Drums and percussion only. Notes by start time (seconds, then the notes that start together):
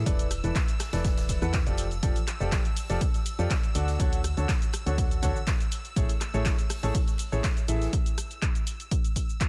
0.06 kick, closed hi-hat, ride, cabasa
0.19 closed hi-hat, ride, cabasa
0.31 cross-stick, open hi-hat, ride, cabasa
0.44 closed hi-hat, cabasa
0.55 kick, cross-stick, snare, clap, closed hi-hat, ride, cabasa
0.68 closed hi-hat, ride, cabasa
0.79 cross-stick, snare, open hi-hat, ride, cabasa
0.93 snare, closed hi-hat, ride, cabasa
1.05 kick, snare, closed hi-hat, ride, cabasa
1.17 snare, closed hi-hat, ride, cabasa
1.29 kick, snare, open hi-hat, ride, cabasa
1.42 cabasa
1.53 kick, snare, clap, closed hi-hat, ride, cabasa
1.67 closed hi-hat, cabasa
1.77 open hi-hat, ride, cabasa
1.91 closed hi-hat, cabasa
2.03 kick, closed hi-hat, ride, cabasa
2.15 closed hi-hat, ride, cabasa
2.27 cross-stick, clap, open hi-hat, ride, cabasa
2.41 cabasa
2.52 kick, cross-stick, snare, clap, closed hi-hat, ride, cabasa
2.65 closed hi-hat, cabasa
2.76 open hi-hat, cabasa
2.90 closed hi-hat, cabasa
3.01 kick, closed hi-hat, ride, cabasa
3.14 closed hi-hat, ride, cabasa
3.26 open hi-hat, ride, cabasa
3.39 cabasa
3.50 kick, snare, clap, closed hi-hat, ride, cabasa
3.63 closed hi-hat, ride, cabasa
3.75 open hi-hat, ride, cabasa
3.88 snare, closed hi-hat, cabasa
4.00 kick, closed hi-hat, ride, cabasa
4.13 closed hi-hat, ride, cabasa
4.24 cross-stick, open hi-hat, ride, cabasa
4.37 closed hi-hat, cabasa
4.49 kick, cross-stick, snare, clap, closed hi-hat, ride, cabasa
4.62 closed hi-hat, ride, cabasa
4.73 cross-stick, open hi-hat, ride, cabasa
4.87 closed hi-hat, cabasa
4.98 kick, closed hi-hat, ride, cabasa
5.11 closed hi-hat, cabasa
5.23 kick, open hi-hat, cabasa
5.36 cabasa
5.47 kick, snare, clap, closed hi-hat, ride, cabasa
5.60 closed hi-hat, cabasa
5.71 open hi-hat, ride, cabasa
5.85 closed hi-hat, cabasa
5.96 kick, closed hi-hat, ride, cabasa
6.09 closed hi-hat, ride, cabasa
6.21 cross-stick, clap, open hi-hat, ride, cabasa
6.34 cabasa
6.45 kick, cross-stick, snare, clap, closed hi-hat, ride, cabasa
6.58 closed hi-hat, cabasa
6.69 cross-stick, open hi-hat, cabasa
6.83 closed hi-hat, cabasa
6.95 kick, closed hi-hat, ride, cabasa
7.08 closed hi-hat, ride, cabasa
7.18 open hi-hat, ride, cabasa
7.32 cabasa
7.43 kick, snare, clap, closed hi-hat, ride, cabasa
7.57 closed hi-hat, ride, cabasa
7.68 open hi-hat, ride, cabasa
7.82 snare, closed hi-hat, cabasa
7.93 kick, closed hi-hat, cabasa
8.06 closed hi-hat, cabasa
8.18 cross-stick, open hi-hat, cabasa
8.31 closed hi-hat, cabasa
8.42 kick, cross-stick, clap, closed hi-hat, cabasa
8.55 closed hi-hat, cabasa
8.67 open hi-hat, cabasa
8.80 closed hi-hat, cabasa
8.91 kick, closed hi-hat, cabasa
9.04 closed hi-hat, cabasa
9.16 kick, open hi-hat, cabasa
9.29 cabasa
9.41 kick, clap, closed hi-hat, cabasa